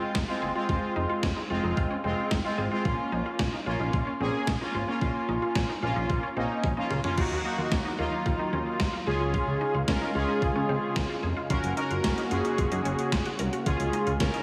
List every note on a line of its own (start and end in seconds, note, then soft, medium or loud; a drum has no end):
0.00 0.23 G#3 medium
0.00 0.23 C4 medium
0.00 0.23 F4 medium
0.15 0.25 F1 loud
0.15 0.22 D#4 medium
0.15 kick loud
0.15 snare loud
0.28 0.52 G#3 medium
0.28 0.52 C4 medium
0.28 0.35 F4 medium
0.28 0.52 F4 medium
0.42 0.52 F#1 medium
0.42 0.49 G#4 medium
0.55 0.67 G#3 medium
0.55 0.67 C4 medium
0.55 0.62 F4 medium
0.55 0.67 F4 medium
0.69 0.79 F1 loud
0.69 1.38 G#3 medium
0.69 1.38 C4 medium
0.69 0.83 F4 medium
0.69 1.38 F4 medium
0.69 kick loud
0.96 1.06 F1 medium
0.96 1.03 D#4 medium
1.09 1.16 F4 medium
1.23 1.33 F1 medium
1.23 1.30 C#4 medium
1.23 kick loud
1.23 snare loud
1.36 1.43 D#4 medium
1.50 1.60 F1 loud
1.50 1.96 G#3 medium
1.50 1.96 C4 medium
1.50 1.57 F4 medium
1.50 1.96 F4 loud
1.64 1.73 F1 loud
1.64 1.70 D#4 medium
1.77 1.87 F1 loud
1.77 1.84 F4 medium
1.77 kick loud
1.91 1.98 C#4 medium
2.04 2.14 F1 loud
2.04 2.39 G#3 medium
2.04 2.18 C4 medium
2.04 2.39 C4 medium
2.04 2.39 F4 medium
2.31 2.41 F1 loud
2.31 2.38 D#4 medium
2.31 kick loud
2.31 snare loud
2.45 2.68 G#3 medium
2.45 2.68 C4 medium
2.45 2.52 F4 medium
2.45 2.68 F4 medium
2.58 2.68 G#1 loud
2.58 2.65 G#4 medium
2.72 2.83 G#3 medium
2.72 2.83 C4 medium
2.72 2.79 F4 medium
2.72 2.83 F4 loud
2.85 2.95 A#1 loud
2.85 3.55 A#3 medium
2.85 3.55 C#4 medium
2.85 2.99 F4 medium
2.85 3.55 F4 medium
2.85 kick loud
3.12 3.22 A#1 loud
3.12 3.19 D#4 medium
3.26 3.33 F4 medium
3.39 3.49 A#1 loud
3.39 3.46 C#4 medium
3.39 kick loud
3.39 snare loud
3.53 3.60 D#4 medium
3.66 3.76 A#1 medium
3.66 4.13 A#3 medium
3.66 4.13 C#4 medium
3.66 3.73 F4 medium
3.66 4.13 F4 loud
3.80 3.90 A#1 medium
3.80 3.87 D#4 medium
3.93 4.03 A#1 medium
3.93 4.00 F4 medium
3.93 kick loud
4.07 4.14 C#4 medium
4.20 4.30 A#1 loud
4.20 4.55 A#3 medium
4.20 4.34 C4 medium
4.20 4.55 C#4 medium
4.20 4.55 G#4 loud
4.47 4.57 A#1 loud
4.47 4.54 C#4 medium
4.47 kick loud
4.47 snare loud
4.61 4.84 A#3 medium
4.61 4.84 C#4 medium
4.61 4.68 D#4 medium
4.61 4.84 F4 loud
4.74 4.84 G#1 medium
4.74 4.81 F4 medium
4.88 5.00 A#3 medium
4.88 5.00 C#4 medium
4.88 4.95 C#4 medium
4.88 5.00 F4 medium
5.01 5.11 A#1 loud
5.01 5.71 A#3 medium
5.01 5.71 C#4 medium
5.01 5.71 F4 medium
5.01 5.16 F4 medium
5.01 kick loud
5.28 5.38 A#1 loud
5.28 5.36 D#4 medium
5.42 5.49 F4 medium
5.55 5.65 A#1 loud
5.55 5.62 C#4 medium
5.55 kick loud
5.55 snare loud
5.69 5.76 D#4 medium
5.82 5.92 A#1 medium
5.82 6.29 A#3 medium
5.82 6.29 C#4 medium
5.82 6.29 F4 loud
5.82 5.89 F4 medium
5.96 6.06 A#1 medium
5.96 6.03 D#4 medium
6.10 6.19 A#1 loud
6.10 6.17 F4 medium
6.10 kick loud
6.23 6.30 C#4 medium
6.36 6.46 A#1 loud
6.36 6.71 A#3 medium
6.36 6.50 C4 medium
6.36 6.71 C#4 medium
6.36 6.71 D#4 medium
6.64 6.73 A#1 loud
6.64 6.71 C#4 medium
6.64 kick loud
6.64 high tom medium
6.77 7.00 A#3 medium
6.77 7.00 C#4 medium
6.77 6.84 D#4 medium
6.77 7.00 F4 medium
6.91 7.00 C#2 medium
6.91 6.98 F4 medium
6.91 mid tom medium
7.04 7.16 A#3 medium
7.04 7.11 C#4 medium
7.04 7.16 C#4 medium
7.04 7.16 F4 medium
7.04 floor tom medium
7.18 7.27 D#2 loud
7.18 9.05 D#3 medium
7.18 9.05 F#3 medium
7.18 7.41 A#3 medium
7.18 7.41 D#4 medium
7.18 7.31 F4 medium
7.18 7.41 F#4 medium
7.18 11.46 F5 medium
7.18 kick loud
7.18 crash medium
7.31 7.41 D#2 medium
7.45 7.91 A#3 medium
7.45 7.52 D#4 medium
7.45 7.91 D#4 medium
7.45 7.91 F#4 medium
7.58 7.68 D#2 loud
7.58 7.65 F4 medium
7.72 7.81 D#2 loud
7.72 7.79 C#4 medium
7.72 kick loud
7.72 snare loud
7.85 7.92 D#4 medium
7.99 8.09 D#2 loud
7.99 8.91 A#3 medium
7.99 8.91 D#4 medium
7.99 8.06 F4 medium
7.99 8.91 F4 loud
8.12 8.19 D#4 medium
8.26 8.36 D#2 loud
8.26 8.33 F4 medium
8.26 kick loud
8.39 8.49 D#3 medium
8.39 8.46 D#4 medium
8.53 8.63 D#2 loud
8.53 8.67 C#4 medium
8.80 8.90 D#2 loud
8.80 8.87 D#4 medium
8.80 kick loud
8.80 snare loud
8.93 9.00 F4 medium
9.07 9.36 C#2 loud
9.07 14.43 C#3 medium
9.07 11.48 G#3 medium
9.07 9.76 C#4 medium
9.07 9.76 F4 medium
9.07 9.14 G#4 medium
9.07 9.76 G#4 loud
9.20 9.27 F4 medium
9.34 9.48 F4 medium
9.34 kick loud
9.47 9.57 C#2 loud
9.61 9.68 D#4 medium
9.74 9.84 C#2 loud
9.74 9.81 F4 medium
9.88 9.98 C#2 loud
9.88 10.11 C#4 medium
9.88 9.95 C#4 medium
9.88 10.11 F4 medium
9.88 10.11 A#4 medium
9.88 kick loud
9.88 snare loud
10.02 10.08 D#4 medium
10.15 10.25 C#2 loud
10.15 11.08 C#4 medium
10.15 11.08 F4 medium
10.15 10.22 F4 medium
10.15 11.08 G#4 loud
10.29 10.36 D#4 medium
10.42 10.52 C#2 loud
10.42 10.49 F4 medium
10.42 kick loud
10.55 10.65 C#3 medium
10.55 10.62 C#4 medium
10.69 10.79 C#2 loud
10.69 10.83 C4 medium
10.96 11.06 C#2 loud
10.96 11.03 D#4 medium
10.96 kick loud
10.96 snare loud
11.10 11.16 F4 medium
11.23 11.33 F1 medium
11.23 11.30 G#4 medium
11.37 11.43 F4 medium
11.50 11.60 F#1 loud
11.50 13.64 A#3 medium
11.50 11.73 C#4 medium
11.50 11.64 F4 medium
11.50 13.64 F#4 medium
11.50 11.73 F#4 medium
11.50 11.73 A#4 medium
11.50 kick loud
11.50 closed hi-hat medium
11.64 11.73 F#1 loud
11.64 closed hi-hat medium
11.77 12.23 C#4 medium
11.77 11.84 D#4 medium
11.77 12.23 F#4 medium
11.77 12.23 A#4 loud
11.77 closed hi-hat medium
11.91 12.00 F#1 loud
11.91 11.98 F4 medium
11.91 closed hi-hat medium
12.04 12.14 F#1 loud
12.04 12.11 C#4 medium
12.04 kick loud
12.04 snare loud
12.04 closed hi-hat medium
12.18 12.25 D#4 medium
12.18 closed hi-hat soft
12.31 12.41 F#1 medium
12.31 13.24 C#4 medium
12.31 12.38 F4 medium
12.31 13.24 F#4 medium
12.31 13.24 G#4 loud
12.31 closed hi-hat medium
12.45 12.52 D#4 medium
12.45 closed hi-hat soft
12.58 12.68 F#1 loud
12.58 12.65 F4 medium
12.58 kick loud
12.58 closed hi-hat medium
12.72 12.81 F#2 medium
12.72 12.79 D#4 medium
12.72 closed hi-hat medium
12.85 12.95 F#1 loud
12.85 12.99 C#4 medium
12.85 closed hi-hat medium
12.99 closed hi-hat medium
13.12 13.22 F#1 loud
13.12 13.19 F4 medium
13.12 kick loud
13.12 snare loud
13.12 closed hi-hat medium
13.25 13.33 F#4 medium
13.25 closed hi-hat soft
13.39 13.49 C2 medium
13.39 13.46 A#4 medium
13.39 closed hi-hat medium
13.53 13.60 F#4 medium
13.53 closed hi-hat medium
13.66 13.76 C#2 loud
13.66 14.43 G#3 medium
13.66 14.13 C#4 medium
13.66 14.13 F4 medium
13.66 14.43 F4 medium
13.66 13.80 F4 loud
13.66 14.13 G#4 medium
13.66 kick loud
13.66 closed hi-hat medium
13.80 13.90 C#2 medium
13.80 closed hi-hat medium
13.93 14.00 D#4 medium
13.93 closed hi-hat medium
14.07 14.17 C#2 loud
14.07 14.14 F4 medium
14.07 closed hi-hat soft
14.20 14.30 C#2 loud
14.20 14.27 C#4 medium
14.20 14.43 C#4 medium
14.20 14.43 F4 medium
14.20 14.43 A#4 loud
14.20 kick loud
14.20 snare loud
14.20 closed hi-hat medium
14.34 14.41 D#4 medium
14.34 closed hi-hat soft